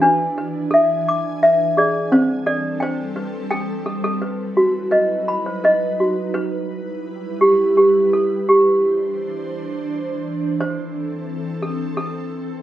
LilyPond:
<<
  \new Staff \with { instrumentName = "Toy piano" } { \time 3/4 \key e \minor \tempo 4 = 86 << { d'8 b'8 e''8 d'''8 e''8 gis'8 | c'8 a'8 g''4 g''8 a'8 | b'8 fis'8 dis''8 b''8 dis''8 fis'8 | r2. |
r2. | r2. | } \\ { b'4 a'4 b'8 d''8 | c''8 d''8 c''8 b'8 a'8. a'16~ | a'4 b'8. c''16 b'8. r16 | b'4. g'8 g'8 a'8 |
g'4 r2 | c''4. a'8 a'4 | } >> }
  \new Staff \with { instrumentName = "Ambient pad" } { \time 3/4 \key e \minor << { <d' gis''>2. | <c' a'>2. | r4 <dis' b'>2 | <e' b'>2. |
<d' c''>2. | <c' a'>2. | } \\ { e2. | g2. | fis2. | g2. |
e2.~ | e2. | } >> }
>>